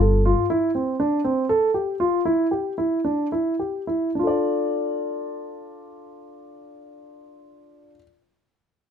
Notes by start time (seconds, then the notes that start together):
Already playing: G1
0.01 A4
0.25 F4
0.50 E4
0.75 C4
1.00 D4
1.24 C4
1.49 A4
1.74 G4
2.00 F4
2.25 E4
2.51 G4
2.78 E4
3.04 D4
3.32 E4
3.59 G4
3.87 E4
4.15 D4
4.19 F4
4.23 A4 D5